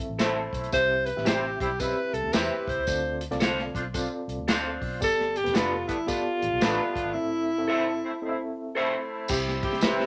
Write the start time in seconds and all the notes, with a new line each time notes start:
Already playing: C4 E4 A4 E5
0.09 A1
0.19 A3 C4 E4 A4 C5 E5, snare, closed hi-hat, tambourine
0.53 B1, kick, closed hi-hat
0.64 closed hi-hat
0.72 C2 C3 C4 E4 G4 C5 E5, kick, closed hi-hat, tambourine
1.05 B4, closed hi-hat
1.16 A1 C4 E4 G4 E5, snare
1.25 G3 C4 E4 G4 C5 E5, snare, closed hi-hat, tambourine
1.60 B1 G3 C4 E4 G4, kick, closed hi-hat
1.80 G3 C4 E4 G4 B4 D#5, kick, closed hi-hat, tambourine
1.87 E5
2.13 C2 A4, closed hi-hat
2.23 D2
2.33 E2 C4 E4 G4 B4 C5 E5, snare, closed hi-hat, tambourine
2.67 C2 C5, kick, closed hi-hat
2.77 C#2
2.87 D2 D3 C4 F4 A4 D5, kick, closed hi-hat, tambourine
3.21 closed hi-hat
3.31 C2 C4 F4 A4 D5, snare, closed hi-hat
3.40 C4 D4 F4 A4 C5 F5, snare, closed hi-hat, tambourine
3.59 snare
3.74 B1 C4 D4 F4, kick, closed hi-hat
3.94 C4 D4 F4 A4 D5, kick, closed hi-hat, tambourine
4.28 C2, closed hi-hat
4.38 D2
4.48 C4 D4 F4 A4 C5 F5, snare, closed hi-hat, tambourine
4.82 B1, kick, open hi-hat
5.00 G1 G2 B3 G4 A4 D5, kick, closed hi-hat, tambourine
5.21 snare
5.36 G4, closed hi-hat
5.44 E1 B3 G4 A4 B4, snare, closed hi-hat
5.54 F1 A3 B3 D4 F4 A4 B4, snare, closed hi-hat, tambourine
5.87 G1 A3 B3 D4 E4, kick, closed hi-hat
6.07 A3 B3 D4 F4 G4 A4 D5, kick, closed hi-hat, tambourine
6.42 A1, closed hi-hat
6.52 B1
6.61 A1 A3 B3 D4 A4 B4, snare, closed hi-hat, tambourine
6.96 G1, kick, closed hi-hat
7.05 G#1
7.13 A2 C4 E4 A4 E5
7.58 C4 E4 A4 E5
7.68 A3 C4 E4 A4 C5 E5
8.04 A3 C4 E4
8.22 A3 C4 E4 A4 D#5
8.29 E5
8.75 A3 C4 E4 A4 C5 E5
9.28 C2 C3 G3 C4 E4 G4, kick, crash, tambourine
9.48 snare
9.63 G1 G4, kick, ride
9.72 C4 E4 G4, snare
9.81 G4 B4 C5 E5, snare, ride, tambourine
10.00 snare